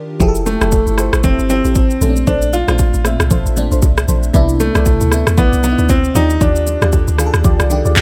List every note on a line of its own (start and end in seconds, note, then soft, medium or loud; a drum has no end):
0.00 0.22 D#3 medium
0.00 0.22 D4 medium
0.00 0.22 F4 medium
0.00 0.21 G4 loud
0.00 0.22 A#4 medium
0.20 0.56 F1 loud
0.20 0.84 F3 loud
0.20 0.57 E4 loud
0.20 0.84 E4 loud
0.20 0.58 G4 medium
0.20 0.85 G4 loud
0.20 0.28 G#4 loud
0.20 0.58 A4 loud
0.20 kick loud
0.20 low conga medium
0.20 shaker medium
0.28 0.88 A4 loud
0.35 shaker medium
0.46 1.26 A3 medium
0.46 low bongo soft
0.46 shaker medium
0.61 0.84 F1 loud
0.61 0.68 E4 medium
0.61 0.68 G4 medium
0.61 0.69 A4 medium
0.61 cross-stick loud
0.61 low bongo medium
0.61 shaker soft
0.72 kick loud
0.72 high bongo medium
0.72 shaker medium
0.87 1.10 G1 loud
0.87 shaker medium
0.97 1.41 F3 medium
0.97 1.41 E4 medium
0.97 1.41 G4 medium
0.97 1.42 C5 medium
0.97 cross-stick medium
0.97 shaker loud
1.13 1.22 A1 medium
1.13 cross-stick loud
1.13 shaker medium
1.24 1.37 F1 loud
1.24 1.48 C4 loud
1.24 1.61 E4 medium
1.24 1.61 G4 medium
1.24 1.61 A4 loud
1.24 kick loud
1.24 low conga medium
1.24 shaker medium
1.39 1.62 G1 medium
1.39 shaker medium
1.49 2.01 F3 medium
1.49 2.30 C4 loud
1.49 2.01 E4 medium
1.49 2.02 G4 medium
1.49 2.02 A4 medium
1.49 low bongo medium
1.49 shaker medium
1.64 1.97 A1 medium
1.64 1.72 E4 medium
1.64 1.72 G4 medium
1.64 1.72 A4 medium
1.64 shaker medium
1.75 kick loud
1.75 high bongo medium
1.75 shaker medium
1.91 shaker medium
2.01 2.24 A#1 loud
2.01 2.53 A#2 medium
2.01 2.53 A3 medium
2.01 2.54 C4 medium
2.01 2.09 C#4 medium
2.01 2.11 D4 medium
2.01 2.11 A4 medium
2.01 2.12 C5 medium
2.01 low conga medium
2.01 shaker loud
2.09 2.57 D4 medium
2.16 shaker medium
2.27 2.63 A#1 loud
2.27 2.64 D4 medium
2.27 2.54 D4 loud
2.27 2.65 A4 medium
2.27 2.65 C5 loud
2.27 kick loud
2.27 low conga medium
2.27 shaker medium
2.42 shaker medium
2.53 2.67 F4 loud
2.53 low bongo medium
2.53 shaker medium
2.67 2.91 A#1 medium
2.67 2.98 A#2 medium
2.67 2.98 A3 medium
2.67 2.99 C4 medium
2.67 2.75 D4 medium
2.67 3.42 F4 loud
2.67 2.99 F4 medium
2.67 2.75 A4 medium
2.67 2.76 C5 medium
2.67 cross-stick loud
2.67 low bongo medium
2.67 shaker soft
2.79 kick loud
2.79 high bongo medium
2.79 shaker medium
2.94 3.17 A1 medium
2.94 shaker medium
3.04 3.48 A#2 medium
3.04 3.48 A3 medium
3.04 3.48 C4 medium
3.04 3.49 E5 medium
3.04 cross-stick medium
3.04 shaker loud
3.20 3.29 C2 medium
3.20 cross-stick loud
3.20 shaker medium
3.31 3.44 A#1 loud
3.31 3.68 D4 medium
3.31 3.68 A4 medium
3.31 3.68 C5 loud
3.31 kick loud
3.31 low conga medium
3.31 shaker medium
3.46 3.69 A1 medium
3.46 shaker medium
3.56 4.20 A#2 loud
3.56 4.20 A3 medium
3.56 4.21 C4 medium
3.56 4.21 D4 loud
3.56 low bongo medium
3.56 shaker medium
3.71 3.81 A#1 loud
3.71 3.79 D4 medium
3.71 3.79 A4 medium
3.71 3.79 C5 medium
3.71 shaker medium
3.82 4.05 C2 medium
3.82 kick loud
3.82 high bongo medium
3.82 shaker medium
3.98 cross-stick loud
3.98 shaker medium
4.08 4.31 A#1 loud
4.08 4.18 D4 medium
4.08 4.18 A4 medium
4.08 4.18 C5 medium
4.08 low conga medium
4.08 shaker loud
4.23 shaker medium
4.33 4.70 C2 loud
4.33 4.98 C3 loud
4.33 4.98 B3 loud
4.33 4.98 D4 loud
4.33 4.71 E4 loud
4.33 4.99 E4 loud
4.33 4.71 B4 medium
4.33 4.72 D5 loud
4.33 kick loud
4.33 low conga medium
4.33 shaker medium
4.49 shaker medium
4.60 5.40 A3 loud
4.60 low bongo medium
4.60 shaker medium
4.75 4.98 C2 loud
4.75 4.82 E4 medium
4.75 4.82 B4 medium
4.75 4.82 D5 medium
4.75 cross-stick loud
4.75 low bongo medium
4.75 shaker soft
4.86 kick loud
4.86 high bongo medium
4.86 shaker medium
5.01 5.24 D2 loud
5.01 shaker medium
5.11 5.54 C3 medium
5.11 5.55 B3 medium
5.11 5.55 D4 medium
5.11 5.56 E4 medium
5.11 cross-stick medium
5.11 shaker loud
5.27 5.36 E2 medium
5.27 cross-stick loud
5.27 shaker medium
5.37 5.51 B1 loud
5.37 5.62 B3 loud
5.37 5.75 E4 loud
5.37 5.75 B4 medium
5.37 5.75 D5 loud
5.37 kick loud
5.37 low conga medium
5.37 shaker medium
5.53 5.75 C2 loud
5.53 shaker medium
5.63 6.15 C3 medium
5.63 5.88 B3 loud
5.63 6.15 B3 medium
5.63 6.14 D4 medium
5.63 5.72 D#4 medium
5.63 low bongo medium
5.63 shaker medium
5.71 6.19 E4 medium
5.78 6.11 D2 medium
5.78 5.86 E4 medium
5.78 5.86 B4 medium
5.78 5.86 D5 medium
5.78 shaker medium
5.89 6.16 C4 loud
5.89 kick loud
5.89 high bongo medium
5.89 shaker medium
6.04 shaker soft
6.14 6.38 D#2 loud
6.14 6.67 D#3 medium
6.14 6.67 D4 medium
6.14 6.42 D#4 loud
6.14 6.25 F4 medium
6.14 6.67 F4 medium
6.14 6.25 G4 medium
6.14 6.68 G4 medium
6.14 6.25 D5 medium
6.14 low conga medium
6.14 shaker loud
6.30 shaker medium
6.41 6.77 D#2 loud
6.41 7.92 D4 loud
6.41 6.78 F4 medium
6.41 6.78 G4 medium
6.41 6.78 D5 loud
6.41 kick loud
6.41 low conga medium
6.41 shaker medium
6.56 shaker medium
6.67 low bongo medium
6.67 shaker medium
6.81 7.05 D#2 loud
6.81 7.12 D#3 medium
6.81 7.12 D4 medium
6.81 6.89 F4 medium
6.81 7.13 F4 medium
6.81 6.89 G4 medium
6.81 7.13 A4 medium
6.81 6.89 D5 medium
6.81 cross-stick medium
6.81 low bongo medium
6.81 shaker soft
6.92 kick medium
6.92 high bongo medium
6.92 shaker medium
7.08 7.30 D2 loud
7.08 shaker medium
7.18 7.61 D#3 loud
7.18 7.62 D4 medium
7.18 7.62 F4 medium
7.18 7.27 G#4 medium
7.18 cross-stick medium
7.18 shaker loud
7.26 7.66 A4 loud
7.34 7.43 D#2 medium
7.34 cross-stick loud
7.34 shaker medium
7.44 7.58 D2 loud
7.44 7.82 F4 loud
7.44 7.82 G4 medium
7.44 7.82 D5 loud
7.44 kick loud
7.44 low conga medium
7.44 shaker medium
7.60 7.82 C2 medium
7.60 cross-stick medium
7.60 shaker medium
7.70 8.02 D#3 medium
7.70 8.02 D4 medium
7.70 8.02 F4 medium
7.70 8.02 G4 loud
7.70 low bongo medium
7.70 shaker medium
7.85 7.95 D2 medium
7.85 7.92 F4 medium
7.85 7.93 G4 medium
7.85 7.93 D5 medium
7.85 shaker medium
7.96 8.02 D#2 medium
7.96 kick loud
7.96 clap loud
7.96 high bongo medium
7.96 shaker medium